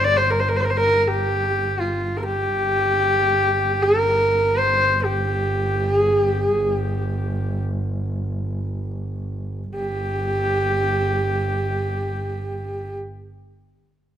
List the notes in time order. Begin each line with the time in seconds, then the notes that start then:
Already playing: G1
0.04 D5
0.16 C5
0.30 A#4
0.40 C5
0.48 A#4
0.56 C5
0.64 A#4
0.70 C5
0.77 A#4
1.01 A#4
1.07 G4
1.80 F4
2.17 A#4
2.23 G4
2.56 G1
3.82 A#4
4.58 C5
5.04 G4
5.95 G#4
6.20 G4
6.47 G#4
6.72 G4
9.75 G1 G4